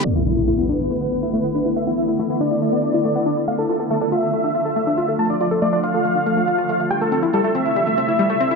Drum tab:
HH |--x-x-xxxxxxxxxx|xxxxxxxxxxxxxxxx|xxxxxxxxxxxxxxxx|xxxxxxxxxxxxxxxx|

HH |xxxxxxxxxxxxxxxx|